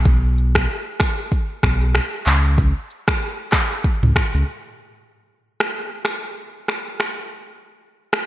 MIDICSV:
0, 0, Header, 1, 3, 480
1, 0, Start_track
1, 0, Tempo, 631579
1, 41, Time_signature, 4, 2, 24, 8
1, 6280, End_track
2, 0, Start_track
2, 0, Title_t, "Sub bass"
2, 0, Program_c, 0, 38
2, 0, Note_on_c, 0, 35, 105
2, 504, Note_off_c, 0, 35, 0
2, 1240, Note_on_c, 0, 35, 92
2, 1518, Note_off_c, 0, 35, 0
2, 1721, Note_on_c, 0, 37, 105
2, 2073, Note_off_c, 0, 37, 0
2, 3060, Note_on_c, 0, 37, 96
2, 3134, Note_off_c, 0, 37, 0
2, 3300, Note_on_c, 0, 37, 81
2, 3374, Note_off_c, 0, 37, 0
2, 6280, End_track
3, 0, Start_track
3, 0, Title_t, "Drums"
3, 41, Note_on_c, 9, 36, 127
3, 41, Note_on_c, 9, 82, 77
3, 117, Note_off_c, 9, 36, 0
3, 117, Note_off_c, 9, 82, 0
3, 287, Note_on_c, 9, 82, 65
3, 363, Note_off_c, 9, 82, 0
3, 420, Note_on_c, 9, 37, 112
3, 421, Note_on_c, 9, 36, 97
3, 424, Note_on_c, 9, 26, 92
3, 425, Note_on_c, 9, 82, 87
3, 496, Note_off_c, 9, 37, 0
3, 497, Note_off_c, 9, 36, 0
3, 500, Note_off_c, 9, 26, 0
3, 501, Note_off_c, 9, 82, 0
3, 529, Note_on_c, 9, 82, 78
3, 605, Note_off_c, 9, 82, 0
3, 758, Note_on_c, 9, 37, 103
3, 760, Note_on_c, 9, 82, 53
3, 763, Note_on_c, 9, 26, 82
3, 763, Note_on_c, 9, 36, 102
3, 834, Note_off_c, 9, 37, 0
3, 836, Note_off_c, 9, 82, 0
3, 839, Note_off_c, 9, 26, 0
3, 839, Note_off_c, 9, 36, 0
3, 905, Note_on_c, 9, 82, 71
3, 981, Note_off_c, 9, 82, 0
3, 1001, Note_on_c, 9, 36, 96
3, 1001, Note_on_c, 9, 82, 77
3, 1077, Note_off_c, 9, 36, 0
3, 1077, Note_off_c, 9, 82, 0
3, 1240, Note_on_c, 9, 36, 97
3, 1240, Note_on_c, 9, 37, 94
3, 1241, Note_on_c, 9, 82, 55
3, 1245, Note_on_c, 9, 26, 73
3, 1316, Note_off_c, 9, 36, 0
3, 1316, Note_off_c, 9, 37, 0
3, 1317, Note_off_c, 9, 82, 0
3, 1321, Note_off_c, 9, 26, 0
3, 1374, Note_on_c, 9, 82, 78
3, 1450, Note_off_c, 9, 82, 0
3, 1479, Note_on_c, 9, 37, 96
3, 1481, Note_on_c, 9, 82, 74
3, 1484, Note_on_c, 9, 26, 79
3, 1555, Note_off_c, 9, 37, 0
3, 1557, Note_off_c, 9, 82, 0
3, 1560, Note_off_c, 9, 26, 0
3, 1720, Note_on_c, 9, 39, 97
3, 1720, Note_on_c, 9, 82, 54
3, 1796, Note_off_c, 9, 39, 0
3, 1796, Note_off_c, 9, 82, 0
3, 1861, Note_on_c, 9, 82, 87
3, 1937, Note_off_c, 9, 82, 0
3, 1960, Note_on_c, 9, 82, 76
3, 1961, Note_on_c, 9, 36, 121
3, 2036, Note_off_c, 9, 82, 0
3, 2037, Note_off_c, 9, 36, 0
3, 2206, Note_on_c, 9, 82, 60
3, 2282, Note_off_c, 9, 82, 0
3, 2339, Note_on_c, 9, 37, 115
3, 2340, Note_on_c, 9, 36, 97
3, 2343, Note_on_c, 9, 26, 92
3, 2344, Note_on_c, 9, 82, 86
3, 2415, Note_off_c, 9, 37, 0
3, 2416, Note_off_c, 9, 36, 0
3, 2419, Note_off_c, 9, 26, 0
3, 2420, Note_off_c, 9, 82, 0
3, 2448, Note_on_c, 9, 82, 74
3, 2524, Note_off_c, 9, 82, 0
3, 2677, Note_on_c, 9, 37, 102
3, 2677, Note_on_c, 9, 39, 101
3, 2680, Note_on_c, 9, 46, 78
3, 2680, Note_on_c, 9, 82, 55
3, 2682, Note_on_c, 9, 26, 82
3, 2683, Note_on_c, 9, 36, 103
3, 2753, Note_off_c, 9, 37, 0
3, 2753, Note_off_c, 9, 39, 0
3, 2756, Note_off_c, 9, 46, 0
3, 2756, Note_off_c, 9, 82, 0
3, 2758, Note_off_c, 9, 26, 0
3, 2759, Note_off_c, 9, 36, 0
3, 2825, Note_on_c, 9, 82, 71
3, 2901, Note_off_c, 9, 82, 0
3, 2921, Note_on_c, 9, 36, 103
3, 2921, Note_on_c, 9, 82, 82
3, 2997, Note_off_c, 9, 36, 0
3, 2997, Note_off_c, 9, 82, 0
3, 3063, Note_on_c, 9, 45, 103
3, 3139, Note_off_c, 9, 45, 0
3, 3160, Note_on_c, 9, 36, 97
3, 3160, Note_on_c, 9, 37, 92
3, 3162, Note_on_c, 9, 82, 54
3, 3165, Note_on_c, 9, 26, 75
3, 3236, Note_off_c, 9, 36, 0
3, 3236, Note_off_c, 9, 37, 0
3, 3238, Note_off_c, 9, 82, 0
3, 3241, Note_off_c, 9, 26, 0
3, 3294, Note_on_c, 9, 82, 75
3, 3370, Note_off_c, 9, 82, 0
3, 4259, Note_on_c, 9, 37, 105
3, 4263, Note_on_c, 9, 26, 82
3, 4335, Note_off_c, 9, 37, 0
3, 4339, Note_off_c, 9, 26, 0
3, 4596, Note_on_c, 9, 37, 94
3, 4601, Note_on_c, 9, 26, 74
3, 4672, Note_off_c, 9, 37, 0
3, 4677, Note_off_c, 9, 26, 0
3, 5080, Note_on_c, 9, 37, 83
3, 5085, Note_on_c, 9, 26, 69
3, 5156, Note_off_c, 9, 37, 0
3, 5161, Note_off_c, 9, 26, 0
3, 5318, Note_on_c, 9, 37, 87
3, 5323, Note_on_c, 9, 26, 68
3, 5394, Note_off_c, 9, 37, 0
3, 5399, Note_off_c, 9, 26, 0
3, 6178, Note_on_c, 9, 37, 109
3, 6183, Note_on_c, 9, 26, 86
3, 6254, Note_off_c, 9, 37, 0
3, 6259, Note_off_c, 9, 26, 0
3, 6280, End_track
0, 0, End_of_file